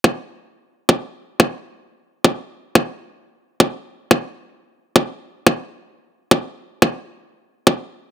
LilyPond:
\new DrumStaff \with { instrumentName = "Drums" } \drummode { \time 4/4 \tempo 4 = 177 bd4 r4 r8 bd8 r4 | bd4 r4 r8 bd8 r4 | bd4 r4 r8 bd8 r4 | bd4 r4 r8 bd8 r4 |
bd4 r4 r8 bd8 r4 | bd4 r4 r8 bd8 r4 | }